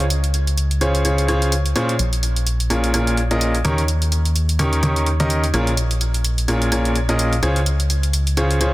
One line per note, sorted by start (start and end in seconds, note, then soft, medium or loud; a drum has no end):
0.00 1.74 C#2 medium
0.00 closed hi-hat soft
0.10 closed hi-hat medium
0.24 closed hi-hat soft
0.34 closed hi-hat medium
0.47 closed hi-hat soft
0.58 closed hi-hat medium
0.71 closed hi-hat soft
0.81 1.02 C#3 medium
0.81 1.02 C#4 medium
0.81 1.02 F4 medium
0.81 1.02 G#4 medium
0.81 1.02 C5 medium
0.81 1.02 C#5 medium
0.81 closed hi-hat medium
0.95 closed hi-hat soft
1.05 1.26 C#3 medium
1.05 1.26 C#4 medium
1.05 1.26 F4 medium
1.05 1.26 G#4 medium
1.05 1.26 C5 medium
1.05 1.26 C#5 medium
1.05 closed hi-hat medium
1.18 closed hi-hat soft
1.28 1.52 C#3 medium
1.28 1.52 C#4 medium
1.28 1.52 F4 medium
1.28 1.52 G#4 medium
1.28 1.52 C5 medium
1.28 1.52 C#5 medium
1.28 closed hi-hat soft
1.42 closed hi-hat soft
1.52 closed hi-hat medium
1.66 closed hi-hat soft
1.76 1.91 A#2 medium
1.76 1.91 C#4 medium
1.76 1.91 F4 medium
1.76 1.91 G#4 medium
1.76 1.91 C5 medium
1.76 1.91 C#5 loud
1.76 closed hi-hat medium
1.89 closed hi-hat soft
1.99 3.63 A#1 medium
1.99 closed hi-hat medium
2.13 closed hi-hat soft
2.23 closed hi-hat medium
2.36 closed hi-hat soft
2.47 closed hi-hat medium
2.60 closed hi-hat soft
2.70 2.91 A#2 medium
2.70 2.91 C#4 medium
2.70 2.91 F4 medium
2.70 2.91 G#4 medium
2.70 2.91 A#4 medium
2.70 2.91 C#5 medium
2.70 closed hi-hat medium
2.84 closed hi-hat soft
2.94 3.17 A#2 medium
2.94 3.17 C#4 medium
2.94 3.17 F4 medium
2.94 3.17 G#4 medium
2.94 3.17 A#4 medium
2.94 3.17 C#5 medium
2.94 closed hi-hat medium
3.07 closed hi-hat soft
3.17 closed hi-hat soft
3.31 3.54 A#2 medium
3.31 3.54 C#4 medium
3.31 3.54 F4 medium
3.31 3.54 G#4 medium
3.31 3.54 A#4 medium
3.31 3.54 D#5 medium
3.31 closed hi-hat soft
3.41 closed hi-hat medium
3.55 closed hi-hat soft
3.65 5.52 D#2 medium
3.65 3.80 D#3 medium
3.65 3.80 C#4 medium
3.65 3.80 D#4 medium
3.65 3.80 G4 medium
3.65 3.80 A#4 medium
3.65 3.80 C#5 medium
3.65 closed hi-hat medium
3.78 closed hi-hat soft
3.88 closed hi-hat medium
4.02 closed hi-hat soft
4.12 closed hi-hat medium
4.25 closed hi-hat soft
4.36 closed hi-hat medium
4.49 closed hi-hat soft
4.59 4.80 D#3 medium
4.59 4.80 C#4 medium
4.59 4.80 D#4 medium
4.59 4.80 G4 medium
4.59 4.80 A#4 medium
4.59 4.80 C#5 medium
4.59 closed hi-hat medium
4.73 closed hi-hat soft
4.83 5.06 D#3 medium
4.83 5.06 C#4 medium
4.83 5.06 D#4 medium
4.83 5.06 G4 medium
4.83 5.06 A#4 medium
4.83 5.06 C#5 medium
4.83 closed hi-hat medium
4.96 closed hi-hat soft
5.06 closed hi-hat soft
5.20 5.43 D#3 medium
5.20 5.43 C#4 medium
5.20 5.43 D#4 medium
5.20 5.43 G4 medium
5.20 5.43 A#4 medium
5.20 5.43 D#5 medium
5.20 closed hi-hat soft
5.30 closed hi-hat medium
5.44 closed hi-hat soft
5.54 7.41 A#1 medium
5.54 5.69 A#2 medium
5.54 5.69 C#4 medium
5.54 5.69 F4 medium
5.54 5.69 G#4 medium
5.54 5.69 A#4 medium
5.54 5.69 C#5 medium
5.54 closed hi-hat medium
5.67 closed hi-hat soft
5.77 closed hi-hat medium
5.91 closed hi-hat soft
6.01 closed hi-hat medium
6.14 closed hi-hat soft
6.24 closed hi-hat medium
6.38 closed hi-hat soft
6.48 6.69 A#2 medium
6.48 6.69 C#4 medium
6.48 6.69 F4 medium
6.48 6.69 G#4 medium
6.48 6.69 A#4 medium
6.48 6.69 C#5 medium
6.48 closed hi-hat medium
6.62 closed hi-hat soft
6.72 6.95 A#2 medium
6.72 6.95 C#4 medium
6.72 6.95 F4 medium
6.72 6.95 G#4 medium
6.72 6.95 A#4 medium
6.72 6.95 C#5 medium
6.72 closed hi-hat medium
6.85 closed hi-hat soft
6.96 closed hi-hat soft
7.09 7.32 A#2 medium
7.09 7.32 C#4 medium
7.09 7.32 F4 medium
7.09 7.32 G#4 medium
7.09 7.32 A#4 medium
7.09 7.32 D#5 medium
7.09 closed hi-hat soft
7.19 closed hi-hat medium
7.33 closed hi-hat soft
7.43 8.74 C#2 medium
7.43 7.58 C#3 medium
7.43 7.58 C#4 medium
7.43 7.58 F4 medium
7.43 7.58 G#4 medium
7.43 7.58 C5 medium
7.43 7.58 C#5 medium
7.43 closed hi-hat medium
7.56 closed hi-hat soft
7.66 closed hi-hat medium
7.80 closed hi-hat soft
7.90 closed hi-hat medium
8.03 closed hi-hat soft
8.13 closed hi-hat medium
8.27 closed hi-hat soft
8.37 8.58 C#3 medium
8.37 8.58 C#4 medium
8.37 8.58 F4 medium
8.37 8.58 G#4 medium
8.37 8.58 C5 medium
8.37 8.58 C#5 medium
8.37 closed hi-hat medium
8.51 closed hi-hat soft
8.61 8.74 C#3 medium
8.61 8.74 C#4 medium
8.61 8.74 F4 medium
8.61 8.74 G#4 medium
8.61 8.74 C5 medium
8.61 8.74 C#5 medium
8.61 closed hi-hat medium